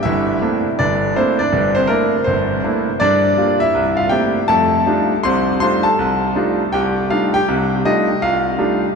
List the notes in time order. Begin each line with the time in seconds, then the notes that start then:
0.03 G1 G2 E4 E5
0.42 A3 A#3 C4 D4 E4
0.79 G1 D4 D5
1.15 A3 A#3 C4 D4 E4 C5
1.39 D4 D5
1.52 G1 G2
1.75 C4 C5
1.87 A3 A#3 C4 D4 E4 A#4
2.24 G1 C4 C5
2.64 A3 A#3 C4 D4 E4
3.00 G2 D4 D5
3.37 G3 A#3 F4
3.60 E4 E5
3.74 C2
3.97 F4 F5
4.09 A3 A#3 C4 D4 E4 G4 G5
4.48 F2 A3 A4 A5
4.86 G3 A3 D4 D#4 F4
5.23 C2 C3 C5 C6
5.60 G3 A3 D4 D#4 F4 C5 C6
5.83 A4 A5
5.99 C2
6.36 G3 A3 D4 D#4 F4
6.72 C2 G4 G5
7.10 G3 A3 D4 D#4 F4 F5
7.34 G4 G5
7.48 C2 C3
7.85 G3 A3 D4 D#4 F4 D#5
8.22 C2 F4 F5
8.58 G3 A3 D4 D#4 F4